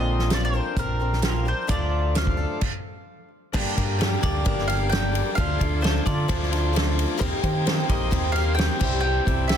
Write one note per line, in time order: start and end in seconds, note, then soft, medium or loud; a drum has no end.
0.00 0.58 A#1 medium
0.00 0.30 A#2 medium
0.00 1.21 A#2 medium
0.00 0.30 D3 medium
0.00 1.22 D3 medium
0.00 0.30 F3 medium
0.00 1.22 A#3 medium
0.00 0.30 C4 medium
0.00 1.22 C4 medium
0.00 1.22 F4 medium
0.00 0.31 A#4 medium
0.00 1.66 A#4 medium
0.00 2.57 C5 medium
0.00 0.32 D#5 medium
0.00 2.58 F5 medium
0.00 1.66 C6 medium
0.19 snare soft
0.30 0.53 F3 medium
0.30 0.54 C4 soft
0.30 0.54 D4 medium
0.30 0.52 A#4 medium
0.30 0.44 D5 medium
0.30 snare medium
0.30 closed hi-hat medium
0.45 0.79 C5 medium
0.53 0.75 F3 soft
0.53 0.76 C4 soft
0.53 0.77 D4 soft
0.53 0.76 A#4 medium
0.76 1.51 A#1 medium
0.76 0.99 F3 medium
0.76 1.00 C4 medium
0.76 0.99 D4 medium
0.76 0.98 A#4 medium
0.76 1.21 A#4 medium
0.76 kick loud
0.76 closed hi-hat medium
1.00 1.46 F3 soft
1.00 1.45 C4 soft
1.00 1.45 D4 soft
1.00 1.44 A#4 soft
1.13 snare soft
1.22 1.44 A#2 medium
1.22 1.45 D3 medium
1.22 1.45 A#3 medium
1.22 1.45 C4 medium
1.22 1.45 F4 medium
1.22 1.47 A#4 medium
1.22 snare loud
1.22 closed hi-hat medium
1.45 1.66 F3 soft
1.45 1.68 C4 soft
1.45 1.67 D4 soft
1.45 1.69 A#4 medium
1.45 1.69 C5 medium
1.67 2.44 D2 loud
1.67 2.14 D3 medium
1.67 2.60 D3 medium
1.67 2.13 F3 medium
1.67 2.60 A3 medium
1.67 2.14 D4 medium
1.67 2.60 D4 medium
1.67 2.15 F4 medium
1.67 2.61 F4 medium
1.67 2.15 A4 medium
1.67 2.61 A4 medium
1.67 2.17 D5 medium
1.67 2.61 D6 medium
1.67 kick loud
1.67 closed hi-hat medium
2.15 2.38 F3 medium
2.15 2.38 D4 medium
2.15 2.37 F4 medium
2.15 2.36 A4 medium
2.15 3.28 F5 medium
2.15 snare loud
2.15 closed hi-hat medium
2.27 kick medium
2.37 2.62 D4 soft
2.37 2.61 F4 soft
2.37 2.61 A4 medium
2.61 kick loud
2.61 crash medium
3.52 3.63 G1 loud
3.52 3.76 G2 medium
3.52 4.00 G2 loud
3.52 3.77 D3 loud
3.52 4.00 D3 medium
3.52 3.77 G3 loud
3.52 3.78 G3 loud
3.52 3.77 A#3 loud
3.52 3.77 A#3 medium
3.52 3.73 D4 loud
3.52 3.76 D4 loud
3.52 3.77 D4 loud
3.52 3.73 G4 medium
3.52 3.76 G4 loud
3.52 5.35 A#4 medium
3.52 3.73 A#4 loud
3.52 3.74 A#4 medium
3.52 7.17 D5 medium
3.52 3.73 D5 loud
3.52 5.36 G5 medium
3.52 7.17 D6 medium
3.52 kick loud
3.52 crash loud
3.75 4.14 G2 loud
3.75 4.00 G3 medium
3.75 3.97 G3 soft
3.75 3.98 A#3 medium
3.75 4.01 A#3 medium
3.75 3.95 D4 medium
3.75 4.02 D4 medium
3.75 3.99 D4 medium
3.75 3.96 G4 medium
3.75 3.99 A#4 medium
3.75 3.95 A#4 medium
3.75 3.96 D5 medium
3.75 kick medium
3.75 ride medium
3.99 4.22 G3 medium
3.99 4.24 G3 medium
3.99 4.22 A#3 medium
3.99 4.24 A#3 medium
3.99 4.37 D4 medium
3.99 4.21 D4 medium
3.99 4.38 G4 medium
3.99 4.38 A#4 medium
3.99 4.20 A#4 medium
3.99 4.38 D5 medium
3.99 snare loud
3.99 ride loud
4.03 4.24 D4 medium
4.03 4.22 G4 medium
4.21 4.42 D2 medium
4.21 4.44 G3 soft
4.21 4.45 A#3 soft
4.21 4.70 A#3 medium
4.21 4.44 D4 medium
4.21 4.68 G4 medium
4.21 4.45 A#4 medium
4.21 4.66 D5 medium
4.21 kick medium
4.21 ride medium
4.25 4.70 G3 medium
4.45 5.20 G1 loud
4.45 4.91 G2 medium
4.45 4.91 D3 medium
4.45 4.88 G3 medium
4.45 4.89 A#3 medium
4.45 4.90 D4 medium
4.45 4.84 D4 medium
4.45 4.84 G4 medium
4.45 4.91 A#4 medium
4.45 4.85 A#4 medium
4.45 4.85 D5 medium
4.45 kick loud
4.45 ride loud
4.58 snare soft
4.68 4.93 G3 medium
4.68 4.93 A#3 medium
4.68 4.94 D4 medium
4.68 4.94 G4 medium
4.68 4.89 F5 loud
4.68 snare soft
4.68 ride medium
4.89 5.37 G2 loud
4.89 5.14 G3 medium
4.89 5.13 A#3 medium
4.89 5.12 D4 medium
4.89 5.30 D4 medium
4.89 5.30 G4 medium
4.89 5.11 A#4 medium
4.89 5.30 D5 medium
4.89 5.35 G5 loud
4.89 snare loud
4.89 ride medium
4.94 5.37 D3 medium
4.94 5.38 G3 medium
4.94 5.38 A#3 loud
4.94 5.38 D4 loud
4.94 5.38 G4 loud
5.12 5.36 G3 soft
5.12 5.37 A#3 soft
5.12 5.36 D4 soft
5.12 5.36 A#4 medium
5.12 ride medium
5.35 5.56 D2 medium
5.35 5.60 D3 medium
5.35 5.82 D3 loud
5.35 5.60 F3 medium
5.35 5.56 D4 medium
5.35 5.60 D4 medium
5.35 5.56 F4 medium
5.35 5.59 F4 medium
5.35 5.56 A4 medium
5.35 5.57 A4 loud
5.35 7.20 A4 medium
5.35 5.57 D5 medium
5.35 5.79 F5 loud
5.35 7.19 F5 medium
5.35 kick loud
5.35 ride loud
5.40 5.62 A3 loud
5.40 5.62 D4 loud
5.40 5.60 F4 loud
5.59 5.98 D2 loud
5.59 5.79 D4 medium
5.59 5.81 D4 soft
5.59 5.82 F4 medium
5.59 5.80 F4 medium
5.59 5.84 F4 medium
5.59 5.82 A4 medium
5.59 5.80 A4 medium
5.59 5.80 F5 medium
5.59 kick medium
5.59 ride medium
5.63 5.83 A3 medium
5.63 5.84 D4 medium
5.81 6.29 D3 medium
5.81 6.05 F3 medium
5.81 6.08 A3 medium
5.81 6.20 D4 medium
5.81 6.06 D4 medium
5.81 6.21 F4 medium
5.81 6.06 F4 medium
5.81 6.21 A4 medium
5.81 6.04 A4 medium
5.81 6.05 C5 medium
5.81 6.21 D5 medium
5.81 ride loud
5.85 6.06 D4 medium
5.85 6.05 F4 medium
5.85 snare loud
6.06 6.25 D3 medium
6.06 6.53 A3 medium
6.06 6.52 D4 medium
6.06 6.28 D4 soft
6.06 6.51 F4 medium
6.06 6.28 F4 soft
6.06 6.28 A4 medium
6.06 6.49 D5 medium
6.06 kick medium
6.06 ride medium
6.28 7.04 D2 loud
6.28 6.75 D3 medium
6.28 6.72 F3 medium
6.28 6.67 D4 medium
6.28 6.72 D4 medium
6.28 6.67 F4 medium
6.28 6.74 F4 medium
6.28 6.67 A4 medium
6.28 6.74 A4 medium
6.28 6.67 D5 medium
6.28 kick loud
6.28 ride loud
6.42 snare soft
6.52 6.75 A3 medium
6.52 6.76 D4 medium
6.52 6.77 F4 medium
6.52 snare soft
6.52 ride medium
6.73 7.20 D3 loud
6.73 7.18 F3 medium
6.73 7.20 A3 loud
6.73 7.18 D4 medium
6.73 7.13 D4 medium
6.73 7.19 F4 medium
6.73 7.13 F4 medium
6.73 7.19 A4 medium
6.73 7.13 A4 medium
6.73 7.14 D5 loud
6.73 ride loud
6.77 7.21 D4 loud
6.77 7.21 F4 loud
6.77 snare loud
6.99 ride medium
7.17 7.30 D#2 loud
7.17 7.42 D#3 loud
7.17 7.65 D#3 medium
7.17 7.42 G3 loud
7.17 7.43 A#3 loud
7.17 7.42 C4 loud
7.17 7.39 D#4 loud
7.17 7.41 G4 loud
7.17 7.40 G4 loud
7.17 7.40 A#4 loud
7.17 8.80 A#4 medium
7.17 7.40 C5 loud
7.17 kick loud
7.17 ride loud
7.21 7.43 C4 loud
7.21 7.42 G4 loud
7.21 8.80 D#5 medium
7.21 8.80 G5 medium
7.21 8.80 C6 medium
7.41 7.81 D#3 loud
7.41 7.66 A#3 medium
7.41 7.65 C4 soft
7.41 7.67 C4 medium
7.41 7.62 D#4 medium
7.41 7.68 G4 medium
7.41 7.65 G4 medium
7.41 7.62 G4 medium
7.41 7.65 A#4 medium
7.41 7.62 A#4 medium
7.41 7.63 C5 medium
7.41 kick medium
7.41 ride medium
7.65 8.12 D#3 medium
7.65 7.89 G3 medium
7.65 7.89 A#3 medium
7.65 7.89 C4 medium
7.65 8.04 D#4 medium
7.65 8.04 G4 medium
7.65 7.88 G4 medium
7.65 8.05 A#4 medium
7.65 7.86 A#4 medium
7.65 8.04 C5 loud
7.65 snare loud
7.65 ride loud
7.88 8.08 A#1 medium
7.88 8.36 A#3 medium
7.88 8.35 C4 medium
7.88 8.10 C4 soft
7.88 8.34 G4 medium
7.88 8.11 G4 soft
7.88 8.11 A#4 medium
7.88 8.37 D#5 medium
7.88 kick medium
7.88 ride medium
8.11 8.68 D#2 loud
8.11 8.57 D#3 medium
8.11 8.56 G3 medium
8.11 8.56 C4 medium
8.11 8.50 D#4 medium
8.11 8.58 G4 medium
8.11 8.50 G4 medium
8.11 8.50 A#4 medium
8.11 8.58 A#4 loud
8.11 8.50 C5 medium
8.11 kick loud
8.11 ride loud
8.32 8.59 G4 medium
8.32 8.54 F5 loud
8.32 ride medium
8.37 8.57 A#3 medium
8.37 8.58 C4 medium
8.37 snare soft
8.55 8.79 D#3 medium
8.55 8.79 G3 medium
8.55 8.80 A#3 medium
8.55 8.79 C4 medium
8.55 8.81 D#4 medium
8.55 8.78 G4 medium
8.55 8.79 G4 medium
8.55 8.81 A#4 medium
8.55 8.78 C5 medium
8.55 8.99 G5 loud
8.55 ride loud
8.59 8.80 C4 medium
8.59 8.80 G4 loud
8.59 8.79 A#4 medium
8.59 snare loud
8.79 9.18 C2 medium
8.79 9.27 C3 medium
8.79 9.02 E3 medium
8.79 9.49 G3 medium
8.79 9.03 G3 medium
8.79 9.27 C4 medium
8.79 9.03 C4 medium
8.79 9.18 E4 medium
8.79 9.25 E4 medium
8.79 9.25 G4 medium
8.79 9.18 G4 medium
8.79 9.04 G4 medium
8.79 9.18 C5 medium
8.79 9.57 C5 medium
8.79 9.18 E5 medium
8.79 9.57 E5 medium
8.79 9.57 G5 medium
8.79 9.57 E6 medium
8.79 kick loud
8.79 crash loud
8.83 9.01 C3 medium
9.01 9.49 C3 loud
9.01 9.48 E3 loud
9.01 9.28 G3 loud
9.01 9.26 C4 loud
9.01 9.47 G5 loud
9.05 9.25 G4 loud
9.25 9.57 C2 medium
9.25 9.50 G3 medium
9.25 9.49 C4 medium
9.25 9.49 C4 soft
9.25 9.45 E4 medium
9.25 9.49 E4 soft
9.25 9.49 G4 medium
9.25 9.45 G4 medium
9.25 9.51 G4 medium
9.25 9.45 C5 medium
9.25 9.46 E5 medium
9.25 kick medium
9.25 ride medium
9.48 9.57 E3 medium
9.48 9.57 G3 medium
9.48 9.57 C4 medium
9.48 9.57 E4 medium
9.48 9.57 G4 medium
9.48 9.57 C5 medium
9.48 9.57 E5 medium
9.48 snare loud
9.48 ride loud
9.52 9.57 G4 medium